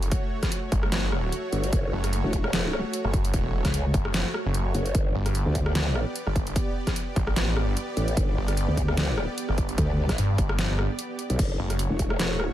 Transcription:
0.00 0.10 F#1 loud
0.00 4.91 A3 medium
0.00 4.91 F#4 medium
0.00 4.91 C#5 medium
0.00 closed hi-hat medium
0.12 kick loud
0.12 closed hi-hat medium
0.43 kick medium
0.43 cross-stick soft
0.43 snare soft
0.43 closed hi-hat medium
0.52 closed hi-hat medium
0.72 1.31 G1 loud
0.72 kick loud
0.72 closed hi-hat medium
0.83 cross-stick medium
0.92 snare loud
0.92 closed hi-hat medium
1.12 cross-stick medium
1.32 closed hi-hat medium
1.53 1.71 G1 loud
1.53 closed hi-hat medium
1.64 closed hi-hat medium
1.73 1.91 F#1 loud
1.73 kick loud
1.73 closed hi-hat medium
1.93 2.22 F#1 loud
2.04 cross-stick medium
2.04 closed hi-hat medium
2.13 closed hi-hat medium
2.24 2.83 E1 loud
2.33 kick medium
2.33 closed hi-hat medium
2.44 cross-stick medium
2.53 snare loud
2.53 closed hi-hat medium
2.73 cross-stick medium
2.93 closed hi-hat medium
3.04 3.32 F#1 loud
3.04 cross-stick medium
3.13 kick loud
3.13 closed hi-hat medium
3.25 closed hi-hat medium
3.34 3.63 E1 loud
3.34 kick loud
3.34 closed hi-hat medium
3.65 3.93 C#2 loud
3.65 kick medium
3.65 cross-stick medium
3.65 snare soft
3.65 closed hi-hat medium
3.74 closed hi-hat medium
3.94 4.23 F#1 medium
3.94 kick loud
3.94 closed hi-hat medium
4.05 cross-stick medium
4.14 snare loud
4.14 closed hi-hat medium
4.34 cross-stick medium
4.45 4.73 F#1 loud
4.54 closed hi-hat medium
4.75 4.93 F#1 medium
4.75 closed hi-hat medium
4.86 closed hi-hat medium
4.95 5.13 G1 loud
4.95 11.35 B3 medium
4.95 11.35 G4 medium
4.95 11.35 D5 medium
4.95 kick loud
4.95 closed hi-hat medium
5.15 5.44 G1 loud
5.26 cross-stick medium
5.26 closed hi-hat medium
5.35 closed hi-hat medium
5.46 6.05 D2 loud
5.55 kick medium
5.55 closed hi-hat medium
5.66 cross-stick medium
5.75 snare loud
5.75 closed hi-hat medium
5.95 cross-stick medium
6.16 closed hi-hat medium
6.27 6.54 G1 loud
6.27 cross-stick medium
6.36 kick loud
6.36 closed hi-hat medium
6.47 closed hi-hat medium
6.56 kick loud
6.56 closed hi-hat medium
6.87 kick medium
6.87 cross-stick medium
6.87 snare soft
6.87 closed hi-hat medium
6.96 closed hi-hat medium
7.16 7.58 A1 loud
7.16 kick loud
7.16 closed hi-hat soft
7.27 cross-stick medium
7.36 snare loud
7.36 closed hi-hat medium
7.57 7.75 G#1 loud
7.57 cross-stick medium
7.77 closed hi-hat medium
7.97 8.15 A1 medium
7.97 closed hi-hat medium
8.08 closed hi-hat medium
8.17 8.36 G1 loud
8.17 kick loud
8.17 closed hi-hat medium
8.37 8.66 G1 loud
8.48 cross-stick medium
8.48 closed hi-hat medium
8.57 closed hi-hat medium
8.68 9.27 D2 loud
8.77 kick medium
8.77 closed hi-hat medium
8.88 cross-stick medium
8.97 snare loud
8.97 closed hi-hat medium
9.18 cross-stick medium
9.38 closed hi-hat medium
9.49 9.77 G1 loud
9.49 cross-stick medium
9.58 kick loud
9.58 closed hi-hat medium
9.69 closed hi-hat medium
9.78 10.17 D2 loud
9.78 kick loud
9.78 closed hi-hat medium
10.09 kick medium
10.09 cross-stick medium
10.09 snare soft
10.09 closed hi-hat medium
10.18 10.37 G2 loud
10.18 closed hi-hat medium
10.38 10.68 G1 loud
10.38 kick loud
10.38 closed hi-hat medium
10.49 cross-stick medium
10.59 snare loud
10.59 closed hi-hat medium
10.70 10.88 G1 loud
10.79 cross-stick medium
10.99 closed hi-hat medium
11.19 closed hi-hat medium
11.30 11.38 B1 loud
11.30 closed hi-hat medium
11.39 11.58 F#1 loud
11.39 12.53 A3 medium
11.39 12.53 F#4 medium
11.39 12.53 C#5 medium
11.39 kick loud
11.39 closed hi-hat medium
11.39 crash medium
11.59 11.89 F#1 loud
11.70 cross-stick medium
11.70 closed hi-hat medium
11.79 closed hi-hat medium
11.90 12.32 E1 medium
11.99 kick medium
11.99 closed hi-hat medium
12.10 cross-stick medium
12.19 snare loud
12.19 closed hi-hat medium
12.32 12.49 D#1 medium
12.40 cross-stick medium

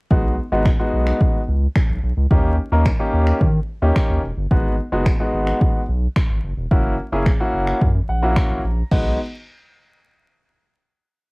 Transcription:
0.10 0.39 B1 loud
0.10 0.33 G#3 medium
0.10 0.33 B3 medium
0.10 0.33 D#4 medium
0.10 0.33 F#4 medium
0.10 kick loud
0.52 0.71 G#1 medium
0.52 0.67 G#3 medium
0.52 0.67 B3 medium
0.52 0.67 D#4 medium
0.52 0.67 F#4 medium
0.65 finger snap loud
0.65 kick loud
0.79 1.39 G#3 medium
0.79 1.40 B3 medium
0.79 1.40 D#4 medium
0.79 1.40 F#4 medium
0.93 1.12 B1 medium
1.07 finger snap medium
1.21 kick loud
1.48 1.67 C#2 medium
1.76 finger snap loud
1.76 kick loud
1.90 1.99 B1 medium
2.03 2.13 B1 medium
2.17 2.27 C#2 medium
2.31 2.59 D#2 loud
2.31 2.53 A#3 medium
2.31 2.53 C#4 medium
2.31 2.53 D#4 medium
2.31 2.54 G4 medium
2.31 kick loud
2.72 2.91 D#2 loud
2.72 2.87 A#3 medium
2.72 2.87 C#4 medium
2.72 2.87 D#4 medium
2.72 2.87 A#4 medium
2.86 finger snap loud
2.86 kick loud
2.99 3.45 A#3 medium
2.99 3.45 C#4 medium
2.99 3.45 D#4 medium
2.99 3.45 G4 medium
3.13 3.32 D#2 loud
3.27 finger snap medium
3.41 3.60 D#3 loud
3.41 kick loud
3.82 3.92 D#2 medium
3.82 4.20 A#3 medium
3.82 4.20 C#4 medium
3.82 4.20 D#4 medium
3.82 4.20 G4 medium
3.96 finger snap loud
3.96 kick loud
4.10 4.19 D#2 medium
4.24 4.33 E1 medium
4.37 4.47 G1 medium
4.51 4.80 G#1 loud
4.51 4.73 G#3 medium
4.51 4.74 B3 medium
4.51 4.74 D#4 medium
4.51 4.74 F#4 medium
4.51 kick loud
4.92 5.11 F#1 medium
4.92 5.07 G#3 medium
4.92 5.07 B3 medium
4.92 5.07 D#4 medium
4.92 5.07 F#4 medium
5.06 finger snap loud
5.06 kick loud
5.20 5.80 G#3 medium
5.20 5.80 B3 medium
5.20 5.80 D#4 medium
5.20 5.80 F#4 medium
5.34 5.53 G#1 medium
5.47 finger snap medium
5.61 kick loud
5.89 6.08 B1 medium
6.16 finger snap loud
6.16 kick loud
6.30 6.39 G#1 medium
6.44 6.53 F#1 medium
6.57 6.67 E1 medium
6.71 7.00 F#1 loud
6.71 6.94 A#3 medium
6.71 6.94 C#4 medium
6.71 6.94 E4 medium
6.71 6.94 F#4 medium
6.71 kick loud
7.12 7.31 F#1 medium
7.12 7.27 A#3 medium
7.12 7.27 C#4 medium
7.12 7.28 E4 medium
7.12 7.28 G#4 medium
7.26 finger snap loud
7.26 kick loud
7.40 7.85 A#3 medium
7.40 7.85 C#4 medium
7.40 7.85 E4 medium
7.40 7.85 F#4 medium
7.54 7.73 F#1 loud
7.67 finger snap medium
7.81 8.00 F#2 loud
7.81 kick loud
8.09 8.37 A#1 medium
8.09 8.34 F#5 medium
8.22 8.60 A#3 medium
8.22 8.60 C#4 medium
8.22 8.60 E4 medium
8.22 8.60 F#4 medium
8.36 finger snap loud
8.36 kick loud
8.50 8.60 A#1 medium
8.64 8.83 A#1 medium
8.91 9.17 B1 loud
8.91 9.17 G#3 medium
8.91 9.17 B3 medium
8.91 9.17 D#4 medium
8.91 9.17 F#4 medium
8.91 kick loud
8.91 crash medium

